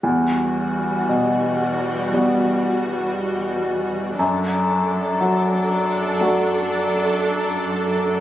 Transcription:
X:1
M:4/4
L:1/8
Q:1/4=59
K:Em
V:1 name="Viola section"
[G,F]8 | [DA]8 |]
V:2 name="Grand piano" clef=bass
E,,2 B,,2 [G,B,F]4 | F,,2 F,2 [A,DF]4 |]
V:3 name="Cello section" clef=bass
E,,8 | F,,8 |]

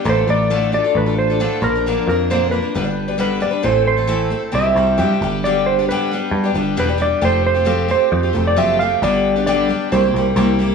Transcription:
X:1
M:4/4
L:1/16
Q:1/4=134
K:Gmix
V:1 name="Electric slide guitar"
c2 d4 d2 B2 c4 _B2- | _B2 B2 c2 =B6 B2 d2 | c2 c6 e8 | d2 c2 B8 B2 d2 |
c2 c4 c4- c d e2 f2 | d4 d4 c4 z4 |]
V:2 name="Twelve-string acoustic guitar"
[A,,D,A,DFA]2 [A,DFA]2 [A,,D,A,DFA]2 [A,DFA] [A,DFA]2 [A,DFA]2 [A,DFA] [A,,D,A,DFA]2 [F,_B,D_B] [F,B,DB] | [_B,,D,F,_B,D_B]2 [F,B,DB]2 [B,,D,F,B,DB]2 [F,B,DB] [F,B,DB] [G,,D,G,=B,D=B] [G,B,DB]2 [G,B,DB] [G,,D,G,B,DB]2 [G,B,DB] [G,B,DB] | [A,,E,A,CEA]3 [A,CEA] [A,,E,A,CEA]2 [A,CEA]2 [C,G,CEG] [CEG] [G,CEG]2 [C,G,CEG]2 [G,B,DG]2 | [G,,D,G,B,DG]3 [G,B,DG] [G,,D,G,B,DG]2 [G,B,DG]3 [G,B,DG] [G,B,DG]2 [G,,D,G,B,DG] [G,B,DG] [G,B,DG]2 |
[F,A,CFG]3 [CFG] [F,A,CFG]2 [A,CFG]3 [CFG] [A,CFG]2 [F,A,CFG]2 [A,CFG]2 | [G,,D,G,B,DG]3 [G,B,DG] [G,,D,G,B,DG]2 [G,B,DG]2 [C,G,_B,EG] [B,EG] [G,B,EG]2 [C,G,B,EG]2 [G,B,EG]2 |]
V:3 name="Picked electric bass" clef=bass
A,,,2 A,,,6 A,,,6 _B,,,2- | _B,,,2 F,,6 G,,,8 | A,,,8 C,,2 C,,2 G,,2 G,,,2- | G,,,6 z2 G,,2 G,,,2 E,,,4 |
F,,,8 F,,2 F,,,2 ^F,,,4 | G,,,8 C,,2 C,,2 C,,4 |]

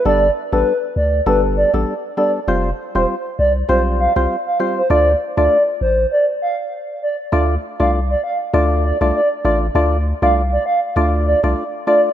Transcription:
X:1
M:4/4
L:1/16
Q:"Swing 16ths" 1/4=99
K:Ddor
V:1 name="Soft synth lead"
d2 z B2 z d2 B z d z3 d z | z3 c z2 d z c z f z2 f z c | d2 z d2 z c2 d z f z3 d z | z3 f z d f z3 d z d z d z |
z3 f z d f z3 d z3 d z |]
V:2 name="Synth stab"
[G,B,DA] z2 [G,B,DA] z4 [G,B,DA]3 [G,B,DA] z2 [G,B,DA] z | [G,CFc] z2 [G,CFc] z4 [G,CFc]3 [G,CFc] z2 [G,CFc] z | [A,DFd] z2 [A,DFd] z12 | [A,DFd] z2 [A,DFd] z4 [A,DFd]3 [A,DFd] z2 [A,DFd] z |
[A,DFd] z2 [A,DFd] z4 [A,DFd]3 [A,DFd] z2 [A,DFd] z |]
V:3 name="Sub bass" clef=bass
G,,,2 z A,,, z2 D,,2 G,,,3 A,,, z4 | F,,,2 z E,,, z2 C,,2 B,,,3 C,, z4 | D,,2 z D,, z2 A,,,2 z8 | D,,2 z C,,3 z2 D,,3 C,, z2 A,,,2 |
D,,3 C,,3 z2 D,,3 C,, z4 |]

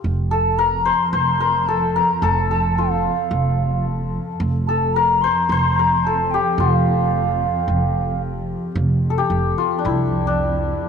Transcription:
X:1
M:4/4
L:1/16
Q:1/4=110
K:none
V:1 name="Ocarina"
z2 a2 _b2 c'2 c'4 a2 b2 | a2 a2 f8 z4 | z2 a2 _b2 c'2 c'2 b2 a2 g2 | f12 z4 |
z16 |]
V:2 name="Santur"
z2 A2 _B2 c2 c2 B2 A2 B2 | A2 A2 F8 z4 | z2 A2 _B2 c2 c2 B2 A2 G2 | F12 z4 |
z2 z/2 A/2 G3 F3/2 D/2 E3 D4- D |]
V:3 name="Cello section" clef=bass
F,,16- | F,,16 | F,,16- | F,,16 |
F,,16 |]
V:4 name="Upright bass" clef=bass
F,,,8 F,,,8 | F,,,8 F,,,8 | F,,,8 F,,,8 | F,,,8 F,,,8 |
F,,,4 F,,,2 z2 C,,8 |]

